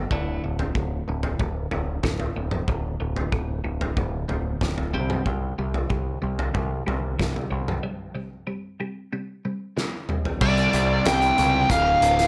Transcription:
0.11 0.37 D1 medium
0.11 0.41 D2 medium
0.11 0.42 A2 medium
0.11 0.42 D3 medium
0.11 kick medium
0.11 floor tom medium
0.44 0.70 D1 medium
0.44 0.72 D2 medium
0.44 0.73 A2 medium
0.59 floor tom medium
0.75 1.02 D1 medium
0.75 1.05 D2 medium
0.75 1.05 A2 medium
0.75 kick loud
1.08 1.34 D1 medium
1.08 1.37 D2 medium
1.08 1.37 A2 medium
1.23 floor tom medium
1.39 1.66 D1 medium
1.39 1.69 D2 medium
1.39 1.69 A2 medium
1.39 kick loud
1.39 mid tom medium
1.71 1.99 D1 medium
1.71 2.01 D2 medium
1.71 2.01 A2 medium
1.71 floor tom medium
2.03 2.30 D1 medium
2.03 2.33 D2 medium
2.03 2.34 A2 medium
2.03 kick loud
2.03 snare medium
2.03 mid tom medium
2.20 floor tom medium
2.36 2.63 D1 medium
2.36 2.66 D2 medium
2.36 2.66 A2 medium
2.51 mid tom medium
2.68 2.95 D1 medium
2.68 2.98 D2 medium
2.68 2.98 A2 medium
2.68 kick loud
2.68 floor tom medium
3.00 3.27 D1 medium
3.00 3.30 D2 medium
3.00 3.30 A2 medium
3.16 floor tom medium
3.32 3.59 D1 medium
3.32 3.62 D2 medium
3.32 3.62 A2 medium
3.32 kick loud
3.64 3.91 D1 medium
3.64 3.94 D2 medium
3.64 3.94 A2 medium
3.81 floor tom medium
3.97 4.24 D1 medium
3.97 4.26 D2 medium
3.97 4.26 A2 medium
3.97 kick loud
3.97 mid tom medium
4.28 4.56 D1 medium
4.28 4.58 D2 medium
4.28 4.58 A2 medium
4.28 floor tom medium
4.61 4.96 D1 medium
4.61 4.91 D2 medium
4.61 4.91 A2 medium
4.61 kick medium
4.61 snare medium
4.61 mid tom medium
4.78 floor tom medium
4.93 5.21 C2 medium
4.93 5.24 C3 medium
4.93 5.25 G3 medium
4.93 5.25 C4 loud
5.10 mid tom medium
5.25 5.53 C2 medium
5.25 5.55 C3 medium
5.25 5.55 G3 medium
5.25 kick medium
5.25 floor tom medium
5.58 5.85 C2 medium
5.58 5.88 C3 medium
5.58 5.88 G3 medium
5.74 floor tom medium
5.90 6.17 C2 medium
5.90 6.19 C3 medium
5.90 6.20 G3 medium
5.90 kick loud
6.22 6.50 C2 medium
6.22 6.52 C3 medium
6.22 6.52 G3 medium
6.39 floor tom medium
6.54 6.82 C2 medium
6.54 6.84 C3 medium
6.54 6.84 G3 medium
6.54 kick loud
6.54 mid tom medium
6.87 7.14 C2 medium
6.87 7.16 C3 medium
6.87 7.16 G3 medium
6.87 floor tom medium
7.19 7.47 C2 medium
7.19 7.49 C3 medium
7.19 7.49 G3 medium
7.19 kick medium
7.19 snare medium
7.19 mid tom medium
7.36 floor tom medium
7.51 7.79 C2 medium
7.51 7.81 C3 medium
7.51 7.81 G3 medium
7.68 mid tom medium
7.83 8.13 C3 medium
7.83 8.13 G3 medium
8.15 8.45 C3 medium
8.15 8.45 G3 medium
8.47 8.77 C3 medium
8.47 8.77 G3 medium
8.80 9.10 C3 medium
8.80 9.10 G3 medium
9.13 9.42 C3 medium
9.13 9.42 G3 medium
9.45 9.75 C3 medium
9.45 9.75 G3 medium
9.77 10.06 C3 medium
9.77 10.07 G3 medium
9.77 snare soft
10.09 10.39 C3 medium
10.09 10.39 G3 medium
10.09 mid tom medium
10.25 floor tom medium
10.41 10.66 C2 loud
10.41 11.05 C3 loud
10.41 11.05 G3 loud
10.41 11.07 C4 loud
10.41 11.08 D5 loud
10.41 kick loud
10.41 crash loud
10.57 closed hi-hat soft
10.73 10.99 C2 medium
10.73 closed hi-hat medium
11.06 11.31 C2 medium
11.06 11.37 C3 medium
11.06 11.37 G3 medium
11.06 11.39 C4 medium
11.06 11.71 G5 loud
11.06 snare loud
11.06 closed hi-hat loud
11.22 closed hi-hat soft
11.38 11.64 C#2 loud
11.38 11.69 C3 medium
11.38 11.69 G3 medium
11.38 11.70 C4 loud
11.38 closed hi-hat medium
11.69 11.95 D1 medium
11.69 12.27 D2 loud
11.69 12.27 A2 loud
11.69 12.27 D3 loud
11.69 12.27 F5 loud
11.69 kick loud
11.69 closed hi-hat loud
12.02 12.27 D1 medium
12.02 closed hi-hat medium
12.19 snare soft
12.19 closed hi-hat medium

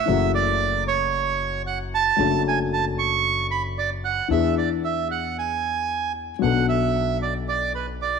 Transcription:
0.00 0.32 E5 medium
0.06 2.08 F#1 medium
0.06 2.08 F#2 medium
0.06 2.08 C#3 soft
0.06 2.07 E3 soft
0.06 2.08 F#3 medium
0.06 2.08 A3 soft
0.10 2.09 F#4 soft
0.35 0.84 D5 medium
0.88 1.62 C#5 medium
1.67 1.79 F#5 medium
1.94 2.43 A5 medium
2.16 4.19 F#1 medium
2.16 4.19 F#2 soft
2.16 2.18 F#3 soft
2.16 4.19 F#3 medium
2.16 4.18 A3 soft
2.16 4.19 D4 soft
2.16 4.20 A4 soft
2.48 2.59 G#5 medium
2.73 2.85 A5 medium
2.99 3.47 C#6 medium
3.51 3.63 B5 medium
3.78 3.90 D5 medium
4.05 4.28 F#5 medium
4.28 6.31 E2 medium
4.28 6.31 E2 soft
4.28 6.31 E3 soft
4.28 6.31 B3 soft
4.28 6.31 D4 soft
4.28 6.32 G#4 soft
4.28 4.55 E5 medium
4.58 4.69 D5 medium
4.84 5.08 E5 medium
5.11 5.37 F#5 medium
5.39 6.12 G#5 medium
6.39 8.19 B1 soft
6.39 8.19 B1 medium
6.39 8.19 B2 medium
6.39 8.19 F#3 soft
6.39 8.19 B3 soft
6.39 8.19 D4 soft
6.39 6.66 F#5 medium
6.43 8.19 A4 soft
6.69 7.18 E5 medium
7.22 7.34 D5 medium
7.48 7.73 D5 medium
7.75 7.87 B4 medium
8.02 8.19 D5 medium

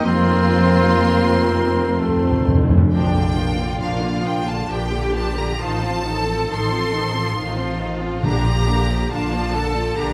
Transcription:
0.05 2.68 F1 medium
0.05 2.68 F2 medium
0.05 1.99 F3 medium
0.05 1.95 F3 medium
0.05 1.96 A#3 medium
0.05 1.95 C4 medium
0.05 1.96 C4 medium
0.05 1.99 F4 medium
0.05 2.00 F4 medium
0.05 2.01 A#4 medium
0.05 2.47 C6 medium
2.00 2.07 F2 soft
2.00 2.59 F3 medium
2.00 2.72 A3 medium
2.00 2.59 C4 medium
2.00 2.71 C4 medium
2.00 2.59 A4 medium
2.08 2.15 F2 soft
2.16 2.23 F2 soft
2.24 2.31 F2 soft
2.32 2.38 F2 medium
2.39 2.46 F2 medium
2.48 2.53 F2 medium
2.55 2.61 F2 medium
2.62 2.68 F2 medium
2.69 2.76 F2 medium
2.77 2.84 F2 medium
2.92 3.71 A#1 medium
2.92 3.13 F3 medium
2.92 3.12 D4 soft
2.92 3.13 D4 medium
2.92 3.34 D4 soft
2.92 3.13 A#4 soft
2.92 3.78 G5 medium
3.13 3.36 D3 soft
3.13 3.36 A#3 soft
3.13 3.37 F4 soft
3.13 3.37 D5 soft
3.36 3.59 F3 soft
3.36 3.58 D4 soft
3.36 3.59 D4 soft
3.36 4.69 F4 medium
3.36 3.58 A#4 soft
3.57 3.81 D3 soft
3.57 3.80 A#3 soft
3.57 3.82 F4 soft
3.57 3.81 D5 soft
3.80 4.59 A#1 medium
3.80 4.01 F3 soft
3.80 4.01 D4 soft
3.80 4.03 D4 soft
3.80 4.03 A#4 medium
3.80 4.26 F5 medium
4.01 4.24 D3 soft
4.01 4.24 A#3 soft
4.01 4.26 F4 soft
4.01 4.26 D5 soft
4.23 4.46 F3 soft
4.23 4.46 D4 soft
4.23 4.48 D4 soft
4.23 4.48 G5 medium
4.27 4.48 A#4 soft
4.46 4.69 D3 soft
4.46 4.69 A#3 soft
4.46 4.69 F4 soft
4.46 4.69 D5 soft
4.46 4.70 A5 medium
4.69 5.50 A#1 medium
4.69 4.90 F3 soft
4.69 4.90 D4 soft
4.69 5.61 G4 medium
4.69 4.91 A#4 soft
4.69 5.15 G5 medium
4.91 5.14 D3 soft
4.91 5.15 A#3 soft
4.91 5.15 F4 soft
4.91 5.15 D5 soft
5.13 5.37 F3 soft
5.13 5.37 D4 soft
5.13 5.38 D4 soft
5.13 5.38 A#4 soft
5.13 5.38 A5 medium
5.36 5.60 D3 soft
5.36 5.60 A#3 soft
5.36 5.61 F4 soft
5.36 5.61 D5 soft
5.36 5.61 A#5 medium
5.59 6.41 A1 medium
5.59 5.81 D#3 medium
5.59 5.81 D#4 medium
5.59 6.06 F4 medium
5.59 5.83 A4 medium
5.59 5.82 C5 medium
5.59 6.52 A5 medium
5.81 6.05 F3 soft
5.81 6.05 C4 soft
5.86 6.08 F4 soft
5.86 6.08 A4 soft
6.03 6.28 D#3 soft
6.03 6.28 D#4 soft
6.03 7.39 A4 medium
6.09 6.29 A4 soft
6.09 6.31 C5 soft
6.25 6.50 F3 soft
6.25 6.50 C4 soft
6.30 6.52 F4 soft
6.30 6.52 A4 soft
6.49 7.29 A1 medium
6.49 6.71 D#3 soft
6.49 6.71 D#4 soft
6.54 6.74 A4 soft
6.54 6.74 C5 soft
6.54 7.82 C6 medium
6.71 6.94 F3 soft
6.71 6.94 C4 soft
6.77 6.97 F4 soft
6.77 6.97 A4 soft
6.93 7.16 D#3 soft
6.93 7.16 D#4 soft
6.98 7.18 A4 soft
6.98 7.18 C5 soft
7.14 7.37 F3 soft
7.14 7.37 C4 soft
7.19 7.39 F4 soft
7.19 7.39 A4 soft
7.36 8.14 A1 medium
7.36 7.57 D#3 soft
7.36 7.57 D#4 soft
7.36 8.23 F4 medium
7.36 7.59 C5 soft
7.40 7.59 A4 soft
7.57 7.80 F3 soft
7.57 7.80 C4 soft
7.61 7.82 F4 soft
7.61 7.81 A4 soft
7.79 8.02 D#3 soft
7.79 8.02 D#4 soft
7.79 8.01 A4 soft
7.79 8.03 C5 soft
8.01 8.24 F3 soft
8.01 8.24 C4 soft
8.01 8.25 F4 soft
8.01 8.24 A4 soft
8.22 9.02 A#1 medium
8.22 9.50 A#2 medium
8.22 8.44 D3 medium
8.22 8.44 D4 medium
8.22 9.12 G4 medium
8.22 8.45 A#4 medium
8.22 8.45 F5 medium
8.22 9.08 A#5 medium
8.45 8.68 F3 soft
8.45 8.68 A#3 soft
8.45 8.68 F4 soft
8.45 8.68 D5 soft
8.68 8.90 D3 soft
8.68 8.90 D4 soft
8.68 8.90 A#4 soft
8.68 8.90 F5 soft
8.89 9.12 F3 soft
8.89 9.12 A#3 soft
8.89 9.12 F4 soft
8.89 9.12 D5 soft
9.12 9.88 A#1 medium
9.12 9.32 D3 soft
9.12 9.32 D4 soft
9.12 9.55 F4 medium
9.12 9.32 A#4 soft
9.12 9.32 F5 medium
9.12 9.98 A5 medium
9.33 9.55 F3 soft
9.33 9.55 A#3 soft
9.33 9.55 F4 soft
9.33 9.55 D5 soft
9.53 9.76 D3 soft
9.53 9.76 D4 soft
9.53 9.98 A4 medium
9.53 9.76 A#4 soft
9.53 9.76 F5 soft
9.74 9.98 F3 soft
9.74 9.98 A#3 soft
9.74 9.97 F4 soft
9.74 9.97 D5 soft
9.97 10.13 A#1 medium
9.97 10.13 D3 soft
9.97 10.13 D4 medium
9.97 10.13 G4 medium
9.97 10.13 A#4 soft
9.97 10.13 F5 soft
9.97 10.13 A#5 medium

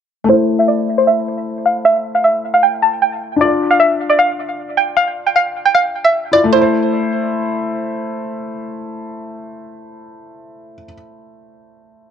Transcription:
0.24 3.34 A3 medium
0.29 3.37 E4 medium
0.29 0.57 C5 loud
0.33 3.39 C5 medium
0.59 0.68 E5 medium
0.68 0.96 D5 medium
0.98 1.06 C5 medium
1.07 1.62 E5 medium
1.66 1.84 F5 medium
1.85 2.13 E5 loud
2.15 2.23 F5 medium
2.24 2.52 E5 medium
2.54 2.62 F5 medium
2.63 2.81 G5 medium
2.82 3.01 A5 medium
3.02 3.39 G5 medium
3.36 6.27 D4 medium
3.41 6.29 F4 medium
3.41 3.69 D5 medium
3.45 6.31 D5 medium
3.71 3.79 F5 medium
3.80 4.08 E5 medium
4.10 4.18 D5 medium
4.19 4.74 F5 medium
4.77 4.95 G5 medium
4.97 5.25 F5 loud
5.26 5.35 G5 medium
5.36 5.64 F5 medium
5.65 5.74 G5 medium
5.75 6.03 F5 medium
6.05 6.31 E5 medium
6.32 6.51 E4 medium
6.32 6.53 F4 soft
6.32 6.51 D5 medium
6.36 6.54 D5 medium
6.44 10.74 A3 medium
6.53 10.83 E4 medium
6.53 7.65 C5 medium
6.61 10.92 C5 medium

